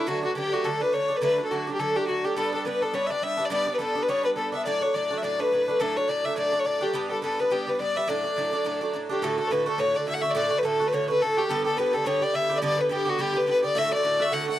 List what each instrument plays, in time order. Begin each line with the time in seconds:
Already playing: hammered dulcimer A4 B4 D5
0.06 bouzouki D3 F#3 A3 D4, fiddle F#4
0.23 bouzouki F#3 A3 D4, fiddle F#4
0.35 bouzouki D3 F#3 A3 D4, fiddle G4
0.52 bouzouki F#3 A3 D4, fiddle F#4
0.64 bouzouki D3 F#3 A3 D4, fiddle A4
0.81 bouzouki F#3 A3 D4, fiddle B4
0.93 bouzouki D3 F#3 A3 D4, fiddle C#5
1.08 bouzouki F#3 A3 D4
1.16 fiddle B4
1.22 bouzouki D3 F#3 A3 D4, fiddle B4
1.38 bouzouki F#3 A3 D4
1.45 fiddle A4
1.51 bouzouki D3 F#3 A3 D4, fiddle F#4
1.67 bouzouki F#3 A3 D4
1.73 fiddle G4
1.79 bouzouki D3 F#3 A3 D4, fiddle A4
1.96 bouzouki F#3 A3 D4, fiddle G4
2.07 bouzouki D3 F#3 A3 D4, fiddle F#4
2.24 bouzouki F#3 A3 D4, fiddle G4
2.37 bouzouki G2 G3 B3 D4, fiddle A4
2.53 bouzouki G3 B3 D4, fiddle A4
2.65 bouzouki G2 G3 B3 D4, fiddle B4
2.81 bouzouki G3 B3 D4, fiddle A4
2.92 bouzouki G2 G3 B3 D4, fiddle C#5 D5
3.06 bouzouki D4, fiddle E5
3.11 bouzouki G3 B3, fiddle D5
3.21 bouzouki G2 G3 B3 D4, fiddle E5
3.37 bouzouki G3 B3 D4
3.45 fiddle D5
3.50 bouzouki G2 G3 B3 D4, fiddle D5
3.67 bouzouki G3 B3 D4
3.74 fiddle B4
3.79 bouzouki G2 G3 B3 D4, fiddle A4
3.95 bouzouki G3 B3 D4
4.02 fiddle B4
4.08 bouzouki G2 G3 B3 D4, fiddle C#5
4.23 bouzouki G3 B3 D4, fiddle B4
4.36 bouzouki G2 G3 B3 D4, fiddle A4
4.52 bouzouki G3 B3 D4, fiddle E5
4.64 bouzouki A2 F#3 A3 D4, fiddle D5
4.81 bouzouki F#3 A3 D4, fiddle C#5
4.94 bouzouki A2 F#3 A3 D4, fiddle D5
5.11 bouzouki F#3 A3 D4
5.17 fiddle E5
5.23 bouzouki A2 F#3 A3 D4, fiddle D5
5.39 bouzouki F#3 A3 D4, fiddle B4
5.52 bouzouki A2 F#3 A3 D4
5.68 bouzouki F#3 A3 D4
5.80 bouzouki A2 F#3 A3 D4, fiddle A4
5.96 bouzouki F#3 A3 D4, fiddle C#5
6.08 bouzouki A2 F#3 A3 D4, fiddle D5
6.24 bouzouki F#3 A3 D4, fiddle E5
6.36 bouzouki A2 F#3 A3 D4, fiddle D5
6.52 bouzouki F#3 A3 D4
6.59 fiddle C#5
6.65 bouzouki A2 F#3 A3 D4, fiddle D5
6.81 bouzouki F#3 A3 D4, fiddle G4
6.93 bouzouki G2 G3 B3 D4
7.10 bouzouki G3 B3 D4, fiddle A4
7.22 bouzouki G2 G3 B3 D4, fiddle A4
7.39 bouzouki G3 B3 D4, fiddle B4
7.51 bouzouki G2 G3 B3 D4, fiddle G4
7.67 bouzouki G3 B3 D4, fiddle B4
7.79 bouzouki G2 G3 B3 D4, fiddle D5
7.95 bouzouki G3 B3 D4, fiddle E5
8.08 bouzouki A2 F#3 A3 D4, fiddle D5
8.24 bouzouki F#3 A3 D4
8.36 bouzouki A2 F#3 A3 D4
8.53 bouzouki F#3 A3 D4
8.65 bouzouki A2 F#3 A3 D4
8.81 bouzouki F#3 A3 D4
8.93 bouzouki A2 F#3 A3 D4
9.09 bouzouki F#3 A3 D4, fiddle G4
9.22 bouzouki A2 D3 A3 F#4, fiddle A4
9.38 bouzouki D3 A3 F#4, fiddle A4
9.47 bouzouki A2, fiddle B4 C#5
9.51 bouzouki D3 A3 F#4, fiddle B4
9.66 bouzouki D3 A3 F#4, fiddle A4
9.78 bouzouki A2 D3 A3 F#4, fiddle C#5
9.94 bouzouki D3 A3 F#4, fiddle D5
10.06 bouzouki A2 D3 A3 F#4, fiddle E5
10.14 fiddle F#5
10.20 bouzouki F#4, fiddle E5
10.24 bouzouki D3 A3
10.30 fiddle D5
10.35 bouzouki A2 D3 A3 F#4, fiddle D5
10.50 bouzouki D3 A3 F#4
10.57 fiddle B4
10.63 bouzouki A2 D3 A3 F#4, fiddle A4
10.80 bouzouki D3 A3 F#4
10.86 fiddle B4
10.92 bouzouki A2 D3 A3 F#4, fiddle C#5
11.08 bouzouki D3 A3 F#4, fiddle B4
11.19 bouzouki A2 D3 A3, fiddle A4
11.24 bouzouki F#4
11.36 bouzouki D3 A3 F#4, fiddle G4
11.47 bouzouki G2 D3 B3 G4, fiddle A4
11.64 bouzouki D3 B3 G4, fiddle A4
11.76 bouzouki G2 D3 B3 G4, fiddle B4
11.92 bouzouki D3 B3 G4, fiddle A4
12.04 bouzouki G2 D3 B3 G4, fiddle C#5
12.21 bouzouki D3 B3 G4, fiddle D5
12.33 bouzouki G2 D3 B3 G4, fiddle E5
12.49 bouzouki D3 B3 G4
12.56 fiddle D5
12.62 bouzouki G2 D3 B3 G4, fiddle D5
12.77 bouzouki D3 B3 G4, fiddle B4
12.89 bouzouki G2 D3 B3 G4, fiddle G4
13.05 bouzouki D3 B3 G4, fiddle F#4
13.09 fiddle F#4
13.18 bouzouki G2 D3 B3 G4, fiddle G4
13.34 bouzouki D3 B3 G4, fiddle B4
13.46 bouzouki G2 D3 B3 G4, fiddle B4
13.62 bouzouki D3 B3 G4, fiddle D5
13.75 bouzouki A2 D3 A3 F#4, fiddle E5, hammered dulcimer E6
13.91 bouzouki D3 A3 F#4, fiddle D5, hammered dulcimer D6
14.03 bouzouki A2 D3 A3 F#4
14.19 bouzouki D3 A3 F#4, fiddle E5, hammered dulcimer E6
14.30 bouzouki A2 D3 A3 F#4, fiddle F#5, hammered dulcimer F#5
14.48 bouzouki D3 A3 F#4, fiddle F#5, hammered dulcimer F#5